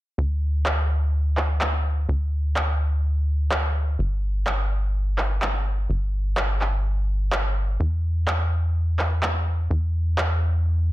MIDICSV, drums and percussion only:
0, 0, Header, 1, 2, 480
1, 0, Start_track
1, 0, Tempo, 476190
1, 183, Time_signature, 4, 2, 24, 8
1, 11012, End_track
2, 0, Start_track
2, 0, Title_t, "Drums"
2, 664, Note_on_c, 9, 39, 107
2, 765, Note_off_c, 9, 39, 0
2, 1384, Note_on_c, 9, 39, 57
2, 1485, Note_off_c, 9, 39, 0
2, 1623, Note_on_c, 9, 39, 114
2, 1723, Note_off_c, 9, 39, 0
2, 2584, Note_on_c, 9, 39, 112
2, 2685, Note_off_c, 9, 39, 0
2, 3543, Note_on_c, 9, 39, 110
2, 3644, Note_off_c, 9, 39, 0
2, 4504, Note_on_c, 9, 39, 113
2, 4605, Note_off_c, 9, 39, 0
2, 5223, Note_on_c, 9, 39, 59
2, 5324, Note_off_c, 9, 39, 0
2, 5464, Note_on_c, 9, 39, 110
2, 5565, Note_off_c, 9, 39, 0
2, 6423, Note_on_c, 9, 39, 103
2, 6524, Note_off_c, 9, 39, 0
2, 6664, Note_on_c, 9, 39, 55
2, 6765, Note_off_c, 9, 39, 0
2, 7383, Note_on_c, 9, 39, 104
2, 7484, Note_off_c, 9, 39, 0
2, 8343, Note_on_c, 9, 39, 104
2, 8444, Note_off_c, 9, 39, 0
2, 9063, Note_on_c, 9, 39, 52
2, 9164, Note_off_c, 9, 39, 0
2, 9302, Note_on_c, 9, 39, 100
2, 9403, Note_off_c, 9, 39, 0
2, 10263, Note_on_c, 9, 39, 101
2, 10364, Note_off_c, 9, 39, 0
2, 11012, End_track
0, 0, End_of_file